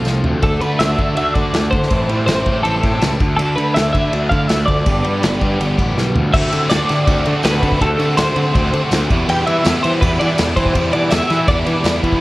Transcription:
Already playing: F2 C3 F3 A3 C4 F4 A4
0.05 C2 F3, snare, tambourine
0.24 D2 A3, floor tom
0.42 D2 D3 A3 D4 F#4 A4, kick, ride
0.61 D3 A3 B4, ride
0.79 D2 D4 E5, snare, ride
0.98 D3 F#4, kick, ride
1.16 D2 D4 E5, ride
1.34 D3 F#4 D5, kick, ride
1.53 D2 A3, snare, ride
1.71 D3 E3 C5, kick, ride
1.82 snare
1.90 A1 A2 E3 A3 C4 E4, kick, ride
2.09 A2 G3, ride
2.26 A1 C4 C5, snare, ride
2.46 A2 G4, kick, ride
2.63 A1 C4 A4, ride
2.83 A2 G4, kick, ride
3.01 C#2 G3, snare, ride
3.20 D2 D3 A3 D4, kick, ride
3.37 D2 D3 A4, ride
3.56 D3 A3 B4, ride
3.74 D2 D4 E5, snare, ride
3.93 D3 E4 E5, kick, ride
4.13 D2 D4, ride
4.29 D3 E4 F5, kick, ride
4.48 D2 A3 E5, snare, ride
4.66 D2 F3 D5, kick, ride
4.85 G1 G2 D3 F3 G3 B3 G4, kick, ride
5.04 G2 G3, ride
5.22 G1 B3, snare, ride
5.41 G2 G4, kick, ride
5.59 G1 B3, ride
5.77 A1 G4, kick, ride
5.96 B1 G3, snare
6.14 D2 F3, floor tom
6.32 D2 D3 A3 C4 E4 F#4 G4 D5 E5 A5, kick, crash
6.51 D3 A3 C4 F#4, ride
6.69 D2 D3 A3 C4 D4 F#4 D5, snare, ride, tambourine
6.88 D3 A3 C4 F#4, snare, ride
7.06 D2 D3 A3 C4 F#4, kick, ride
7.24 D3 A3 C4 F#4, ride
7.43 D2 D3 A3 B3 C4 F#4 B4, snare, ride, tambourine
7.62 D3 A3 C4 F#4, kick, ride
7.72 kick
7.81 D2 D3 A3 C4 F#4 A4, kick, ride
7.99 D3 A3 C4 F#4, ride
8.17 D2 D3 A3 C4 F#4 C5, snare, ride, tambourine
8.36 D3 A3 C4 F#4, ride
8.54 D2 D3 A3 C4 F#4, kick, ride
8.73 D3 A3 C4 F#4, ride
8.91 D2 D3 A3 C4 F#4, snare, ride, tambourine
9.10 E2 B2 E3 G3 B3 E4 E5 D6, kick, ride
9.29 E2 B2 E3 G3 B3 E4 G4 G5, ride
9.47 E2 B2 E3 G3 B3 E4 E5, ride
9.65 E2 B2 E3 G3 B3 E4, snare, ride, tambourine
9.83 E2 B2 E3 G3 B3 C4 E4 C5, ride
10.01 E2 B2 E3 G3 B3 E4 B4, kick, ride
10.19 E2 B2 E3 G3 B3 D4 E4 D5, ride
10.38 E2 B2 E3 G3 B3 E4, snare, ride, tambourine
10.56 E2 B2 E3 G3 B3 C4 E4 C5, kick, ride
10.66 kick
10.75 E2 B2 E3 G3 B3 E4, kick, ride
10.92 E2 B2 E3 G3 B3 D4 E4 D5, ride
11.11 E2 B2 E3 G3 B3 E4 E5, snare, ride, tambourine
11.30 E2 B2 E3 G3 B3 E4, snare, ride
11.47 E2 B2 E3 G3 B3 D4 E4 D5, kick, ride
11.66 E2 B2 E3 G3 B3 E4, ride
11.84 E2 B2 E3 G3 B3 E4, snare, ride, tambourine
12.02 E2 B2 E3 G3 B3 E4, kick, ride
12.12 kick

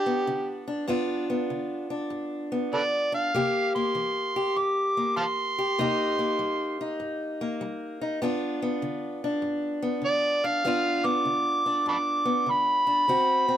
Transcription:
Already playing: G2 D4 F4 G4
0.06 B3
0.27 D3
0.68 D4
0.88 G2 B3 D4 F4
1.30 B3
1.50 D3
1.90 D4
2.10 G2
2.52 B3
2.73 D3 A4 B4 D5
3.12 D4 F5
3.34 C3 A#3 G4
3.75 A#3 C6
3.95 E3
4.36 G4
4.57 G2 D6
4.97 A#3
5.17 E3 F5 A5 C6
5.58 G4
5.78 C3 A#3 D#4 G4
6.19 A#3
6.39 G3
6.81 D#4
7.00 G2
7.41 A#3
7.61 G3
8.01 D#4
8.22 G2 B3 D4 F4
8.62 B3
8.82 D3
9.24 D4
9.42 G2
9.82 B3
10.02 D3 D5
10.44 D4 F5
10.64 G2 B3 D4 F4
11.04 B3 D6
11.25 D3
11.66 D4
11.86 G2 A5 B5 D6
12.25 B3
12.46 D3 B5
12.87 D4
13.08 D3 C4 F#4
13.48 C4

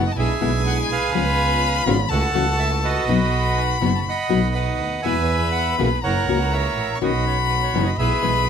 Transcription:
Already playing: F#1 B3 D#4 F#4 F#5
0.07 D#5
0.12 B1 D4 A5
0.16 G#3 E4 G#4 E5 G#5
0.39 B1 B2 D3 G#3 B3 D4 E4
0.67 F#5
0.89 B1 B4 F5 G#5
1.12 C#2 C#3 F3 G#3 B3 C#4 F4 G#4 B5
1.85 G#1 C#3 E3 A3 B3 C#4 F4 F#4 F5
2.09 C#2 A3 E4 F#4 A4 F#5 A5
2.34 C#2 C#3 E3 A3 C#4 E4 F#4
2.59 E5
2.84 F#4 B4 D#5
3.06 B1 B2 F#3 B3 D#4 F#4 B5
3.58 G#5
3.71 F#5
3.81 F#1 B2 F#3 B3 D#4 F#4
3.95 A5
4.09 D#5 F#5 B5
4.29 B1 B2 F#3 B3 D#4 F#4
4.55 B4 D#5 F#5
4.80 D2
5.02 E2 B2 E3 G#3 B3 E4 G#4 B4 E5 G#5 B5
5.52 F#5
5.78 B1 C#3 E3 A#3 B3 C#4 E4 F#4 G#4 E5
6.02 F#1 A#3 E4 F#4 A#4 C#5 F#5 A#5
6.28 C#2 C#3 E3 A#3 C#4 E4 F#4
6.52 A#4 C#5 E5
6.77 A1
6.95 C#6
7.01 B1 B2 D#3 B3 C#4 D#4 F#4 D#5 B5
7.27 C#5
7.49 B4
7.63 C#5
7.73 F#1 B2 E3 G#3 B3 C#4 D#4 E4
7.84 D#5
7.98 B1 G#3 B3 E4 G#4 B4 E5 B5
8.22 B1 B2 E3 G#3 B3 E4

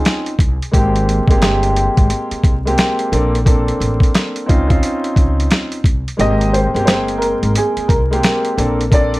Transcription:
Already playing: C4 C#4 D#4 F4 G#4
0.05 snare, closed hi-hat
0.26 closed hi-hat
0.39 C2, kick, closed hi-hat
0.62 closed hi-hat
0.71 G#1 G#3 A#3 C4 G4, kick, closed hi-hat
0.96 closed hi-hat
1.09 closed hi-hat
1.27 G1 G#3 A#3 C4 G4, kick, closed hi-hat
1.41 G#3 A#3 C4 G4, snare, closed hi-hat
1.63 closed hi-hat
1.77 closed hi-hat
1.97 G#1, kick, closed hi-hat
2.10 closed hi-hat
2.31 muted upright bass stroke, closed hi-hat
2.44 C2, kick, closed hi-hat
2.65 G#3 A#3 C4 G4, closed hi-hat
2.78 snare, closed hi-hat
2.99 closed hi-hat
3.12 A#1 A#3 C4 D4 A4, closed hi-hat
3.35 closed hi-hat
3.45 A#3 C4 D4 A4, kick, closed hi-hat
3.68 closed hi-hat
3.80 A1, closed hi-hat
4.00 kick, closed hi-hat
4.15 snare, closed hi-hat
4.36 closed hi-hat
4.46 C#2 C4 C#4 D#4 F4, kick, closed hi-hat
4.68 C4 C#4 D#4 F4, kick, closed hi-hat
4.83 closed hi-hat
5.04 closed hi-hat
5.16 C#2, kick, closed hi-hat
5.40 closed hi-hat
5.51 snare, closed hi-hat
5.72 closed hi-hat
5.84 C2, kick, closed hi-hat
6.08 closed hi-hat
6.17 G#1 G#3 A#3 C4 G4 D#5, closed hi-hat
6.41 closed hi-hat
6.53 C5, closed hi-hat
6.74 G1 G#3 A#3 C4 G4, closed hi-hat
6.86 G#3 A#3 C4 C5 G5, snare, closed hi-hat
7.08 closed hi-hat
7.18 A#4, closed hi-hat
7.43 G#1, closed hi-hat
7.55 G#4, closed hi-hat
7.77 muted upright bass stroke, closed hi-hat
7.88 C2 A#4, kick, closed hi-hat
8.11 G#3 A#3 C4 G4, closed hi-hat
8.23 snare, closed hi-hat
8.45 closed hi-hat
8.57 A#1 A#3 C4 D4 A4, closed hi-hat
8.81 closed hi-hat
8.90 A#3 C4 D4 A4 D5, kick, closed hi-hat
9.14 closed hi-hat

